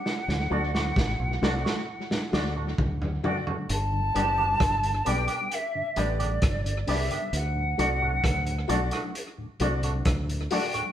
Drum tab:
HH |----------------|x-x-xxxxx-xxxxox|x-x-xxxxx-xxxxox|
SD |oo-oo-oo-oo-----|----r-------r---|----r--r----r---|
FT |------------oooo|----------------|----------------|
BD |----o-------o---|----o-------o---|----o-------o---|